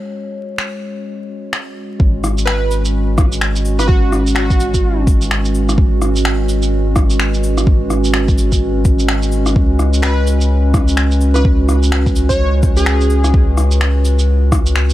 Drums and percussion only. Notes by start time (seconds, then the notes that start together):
0.58 finger snap
1.53 finger snap
2.00 kick
2.24 cross-stick, cabasa
2.38 shaker
2.47 finger snap
2.71 cabasa, shaker
2.85 shaker
3.18 kick, cross-stick, cabasa
3.32 shaker
3.41 finger snap
3.56 shaker
3.65 cabasa
3.79 cross-stick, shaker
3.89 kick
4.13 cross-stick, cabasa
4.27 shaker
4.36 finger snap
4.50 kick, shaker
4.60 cabasa, shaker
4.74 kick, shaker
5.07 kick, cabasa
5.22 shaker
5.31 finger snap
5.45 shaker
5.55 cabasa
5.69 cross-stick, shaker
5.78 kick
6.02 cross-stick, cabasa
6.16 shaker
6.25 finger snap
6.49 cabasa, shaker
6.62 shaker
6.96 kick, cross-stick, cabasa
7.10 shaker
7.20 finger snap
7.34 shaker
7.43 cabasa
7.58 cross-stick, shaker
7.67 kick
7.90 cross-stick, cabasa
8.04 shaker
8.14 finger snap
8.28 kick, shaker
8.38 cabasa, shaker
8.52 kick, shaker
8.85 kick, cabasa
8.99 shaker
9.08 finger snap
9.23 shaker
9.32 cabasa
9.46 cross-stick, shaker
9.56 kick
9.79 cross-stick, cabasa
9.94 shaker
10.03 finger snap
10.27 cabasa, shaker
10.41 shaker
10.74 kick, cross-stick, cabasa
10.88 shaker
10.97 finger snap
11.11 shaker
11.21 cabasa
11.36 cross-stick, shaker
11.45 kick
11.69 cross-stick, cabasa
11.83 shaker
11.92 finger snap
12.06 kick, shaker
12.16 cabasa, shaker
12.30 kick, shaker
12.63 kick, cabasa
12.77 shaker
12.86 finger snap
13.01 shaker
13.10 cabasa
13.24 cross-stick, shaker
13.34 kick
13.57 cross-stick, cabasa
13.71 shaker
13.81 finger snap
14.05 cabasa, shaker
14.19 shaker
14.52 kick, cross-stick, cabasa
14.66 shaker
14.76 finger snap
14.90 shaker